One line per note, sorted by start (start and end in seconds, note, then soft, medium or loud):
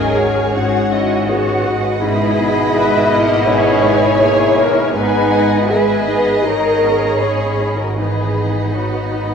0.00 4.90 G#1 medium
0.00 0.51 G#2 medium
0.00 0.55 G#2 medium
0.00 0.16 F#3 medium
0.00 0.17 C#4 medium
0.00 0.52 C#4 medium
0.00 0.92 C#4 soft
0.00 1.29 F#4 medium
0.00 0.40 G#4 medium
0.00 0.55 G#4 loud
0.00 0.54 A#4 medium
0.00 1.25 C#5 medium
0.00 0.18 D#5 medium
0.00 0.50 G#5 medium
0.16 1.26 G#3 medium
0.16 0.77 F#4 medium
0.16 0.55 C#5 medium
0.52 1.99 G#2 medium
0.52 1.99 C#4 loud
0.52 2.03 F#4 loud
0.52 0.91 G#4 medium
0.52 1.27 F#5 medium
0.52 0.93 F#5 loud
0.56 2.02 G#2 medium
0.91 3.84 G#3 medium
0.91 1.51 C#4 medium
0.91 1.28 E4 medium
0.91 1.29 D#5 medium
1.28 1.66 B3 medium
1.28 2.02 F#4 medium
1.28 2.06 F#4 medium
1.28 1.88 G#4 medium
1.28 1.66 C#5 medium
1.28 4.20 D#5 medium
1.28 2.01 F#5 medium
1.66 2.02 G#3 medium
1.66 2.06 C#4 medium
1.66 2.03 F#4 medium
1.66 2.75 B4 medium
2.01 3.43 G#2 medium
2.01 3.47 G#2 medium
2.01 4.90 B2 loud
2.01 2.74 G#3 loud
2.01 4.91 E4 loud
2.01 2.75 G#4 loud
2.01 3.47 B5 loud
2.39 2.97 B3 medium
2.39 3.11 B3 medium
2.75 3.47 G#3 medium
2.75 3.33 G#4 medium
2.75 4.20 G#4 medium
2.75 3.12 B4 medium
2.75 3.10 E5 medium
3.11 3.47 A#3 loud
3.11 3.70 B3 medium
3.11 4.57 B3 medium
3.11 3.48 D#5 medium
3.47 4.90 G#2 medium
3.47 4.93 G#2 medium
3.47 3.85 C#4 loud
3.47 4.20 G#4 loud
3.47 4.94 C#5 loud
3.47 4.93 G#5 medium
3.84 4.43 G#3 medium
3.84 7.75 G#3 medium
3.84 4.21 B3 medium
4.20 4.95 A#3 medium
4.20 4.79 G#4 medium
4.20 8.01 G#4 medium
4.20 4.57 G#4 medium
4.20 4.93 C#5 medium
4.56 4.93 B3 medium
4.56 5.32 B3 medium
4.56 4.95 A#4 medium
4.93 9.34 G#1 loud
4.93 6.40 G#2 medium
4.93 7.97 G#2 medium
4.93 5.69 G#3 loud
4.93 5.69 B3 loud
4.93 5.69 D#4 loud
4.93 5.31 B4 loud
4.93 5.32 B4 loud
4.93 5.69 B4 medium
4.93 5.69 G#5 loud
5.31 5.92 B3 medium
5.31 7.97 D#5 medium
5.31 5.70 F#5 medium
5.70 6.08 G#3 medium
5.70 6.45 G#4 loud
5.70 6.30 G#4 medium
5.70 7.95 G#4 medium
5.70 6.45 B4 loud
5.70 6.08 E5 medium
5.70 6.43 G#5 medium
6.08 6.81 B3 medium
6.08 6.45 B3 medium
6.08 6.67 D#4 medium
6.08 6.45 D#5 medium
6.44 7.05 D#3 medium
6.44 8.02 D#3 medium
6.44 7.03 D#4 loud
6.44 6.82 D#4 medium
6.44 7.21 A#4 loud
6.44 7.99 C#5 medium
6.44 7.21 A#5 medium
6.82 7.43 B3 medium
6.82 7.59 B3 medium
6.82 7.98 C#4 medium
7.20 7.77 D#4 medium
7.20 7.79 G#4 medium
7.20 7.83 G#4 medium
7.20 7.97 B5 medium
7.60 8.36 B3 soft
7.60 7.98 D#4 soft
7.77 7.97 F#4 medium
7.77 7.99 A#4 medium
7.97 9.34 G#2 medium
7.97 8.75 E3 medium
7.97 9.34 B3 medium
7.97 9.34 D#4 medium
7.97 8.74 G#4 medium
7.97 9.34 B4 medium
7.97 9.34 D#5 medium
7.97 9.34 B5 medium
8.37 8.99 B3 soft
8.37 9.12 B3 soft
8.75 9.34 D#4 soft
8.75 9.34 D#4 medium
8.75 9.34 F#4 medium
8.75 9.34 C#5 soft
9.13 9.34 B3 soft
9.13 9.34 D#4 soft